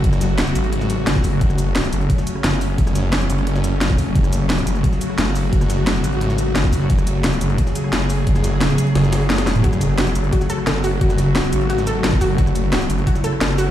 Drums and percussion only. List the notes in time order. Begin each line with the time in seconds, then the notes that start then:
0.04 kick, closed hi-hat
0.13 cross-stick, snare, shaker
0.21 snare, closed hi-hat, shaker
0.38 snare, closed hi-hat
0.47 shaker
0.55 closed hi-hat, shaker
0.64 closed hi-hat
0.73 cross-stick, closed hi-hat
0.81 snare, shaker
0.90 closed hi-hat, shaker
1.07 snare, closed hi-hat
1.15 kick, snare
1.24 kick, closed hi-hat, open hi-hat, shaker
1.41 kick, closed hi-hat
1.50 cross-stick, shaker
1.58 closed hi-hat, shaker
1.75 snare, closed hi-hat, open hi-hat
1.84 snare, shaker
1.93 closed hi-hat, shaker
2.01 closed hi-hat
2.10 kick, closed hi-hat
2.18 snare, shaker
2.27 closed hi-hat, shaker
2.35 cross-stick
2.44 snare, closed hi-hat
2.53 snare
2.61 closed hi-hat, open hi-hat, shaker
2.78 kick, closed hi-hat
2.87 cross-stick, snare, shaker
2.95 snare, closed hi-hat, shaker
3.13 snare, closed hi-hat
3.21 shaker
3.30 closed hi-hat, shaker
3.38 closed hi-hat
3.47 cross-stick, closed hi-hat
3.55 snare, shaker
3.64 closed hi-hat, shaker
3.81 snare, closed hi-hat
3.90 kick, snare
3.98 kick, closed hi-hat, open hi-hat, shaker
4.15 kick, closed hi-hat
4.24 cross-stick, shaker
4.33 closed hi-hat, shaker
4.50 snare, closed hi-hat, open hi-hat
4.58 snare, shaker
4.67 closed hi-hat, shaker
4.75 closed hi-hat
4.84 kick, closed hi-hat
4.93 snare, shaker
5.01 closed hi-hat, shaker
5.10 cross-stick
5.18 snare, closed hi-hat
5.27 snare
5.35 closed hi-hat, open hi-hat, shaker
5.53 kick, closed hi-hat
5.61 cross-stick, snare, shaker
5.70 snare, closed hi-hat, shaker
5.87 snare, closed hi-hat
5.96 shaker
6.04 closed hi-hat, shaker
6.13 closed hi-hat
6.21 cross-stick, closed hi-hat
6.30 snare, shaker
6.38 closed hi-hat, shaker
6.55 snare, closed hi-hat
6.64 kick, snare
6.73 kick, closed hi-hat, open hi-hat, shaker
6.90 kick, closed hi-hat
6.98 cross-stick, shaker
7.07 closed hi-hat, shaker
7.24 snare, closed hi-hat, open hi-hat
7.33 snare, shaker
7.41 closed hi-hat, shaker
7.50 closed hi-hat
7.58 kick, closed hi-hat
7.67 snare, shaker
7.75 closed hi-hat, shaker
7.84 cross-stick
7.93 snare, closed hi-hat
8.01 snare
8.10 closed hi-hat, open hi-hat, shaker
8.27 kick, closed hi-hat
8.35 cross-stick, snare, shaker
8.44 snare, closed hi-hat, shaker
8.61 snare, closed hi-hat
8.70 shaker
8.78 closed hi-hat, shaker
8.87 closed hi-hat
8.95 cross-stick, snare, closed hi-hat, open hi-hat
9.04 snare, shaker
9.13 snare, closed hi-hat, open hi-hat, shaker
9.21 snare
9.30 snare, closed hi-hat
9.38 snare, closed hi-hat, shaker
9.47 snare, open hi-hat, shaker
9.55 closed hi-hat, mid tom
9.64 kick, closed hi-hat
9.73 cross-stick, shaker
9.81 closed hi-hat, shaker
9.98 snare, closed hi-hat, open hi-hat
10.07 snare, shaker
10.15 closed hi-hat, shaker
10.24 closed hi-hat
10.33 kick, closed hi-hat
10.41 snare, shaker
10.50 closed hi-hat, shaker
10.58 cross-stick
10.67 snare, closed hi-hat
10.75 snare
10.84 closed hi-hat, open hi-hat, shaker
11.01 kick, closed hi-hat
11.10 cross-stick, snare, shaker
11.18 snare, closed hi-hat, shaker
11.35 snare, closed hi-hat
11.44 shaker
11.53 closed hi-hat, shaker
11.61 closed hi-hat
11.70 cross-stick, closed hi-hat
11.78 snare, shaker
11.87 closed hi-hat, shaker
12.04 snare, closed hi-hat
12.13 kick, snare
12.21 kick, closed hi-hat, open hi-hat, shaker
12.38 kick, closed hi-hat
12.47 cross-stick, shaker
12.55 closed hi-hat, shaker
12.73 snare, closed hi-hat, open hi-hat
12.81 snare, shaker
12.90 closed hi-hat, shaker
12.98 closed hi-hat
13.07 kick, closed hi-hat
13.15 snare, shaker
13.24 closed hi-hat, shaker
13.33 cross-stick
13.41 snare, closed hi-hat
13.50 snare
13.58 closed hi-hat, open hi-hat, shaker